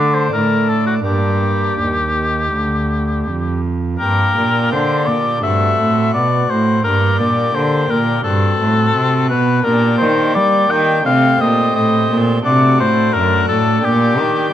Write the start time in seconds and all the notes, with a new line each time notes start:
Already playing: D3 A3 D4 D5
0.14 C5
0.33 A2 A#4
0.69 A4
0.86 F#4
1.01 G2 A#3 D4
1.05 G2 G4
1.79 D#2
2.53 D2
3.27 F2
3.96 A#3 D4 G4 A#4
4.01 G2
4.37 A#2
4.72 D3 C5
5.06 A#2 D5
5.39 A3 C4 F#4
5.43 G2 E5
5.78 A2
6.13 B2 D5
6.50 A2 C5
6.80 A#3 D4 G4 A#4
6.85 G2
7.19 A#2 D5
7.54 D3 C5
7.90 A#2 A#4
8.21 C4 F#4 A4
8.25 G2
8.61 A2
8.95 C3
9.29 B2 B4
9.60 A#3 D4 G4
9.64 A#2 A#4
9.98 D#3 C5
10.34 G3 D5
10.70 D#3 G5
11.00 A3 C4 G4
11.04 C3 F5
11.39 A#2 D#5
11.74 A2 D#5
12.10 A#2
12.40 A3 D4 F#4
12.44 C3 D5
12.79 A2 C5
13.12 F#2 A#4
13.47 A2 A4
13.78 A#2 D4 G4
13.84 A#2 G4
14.16 D#3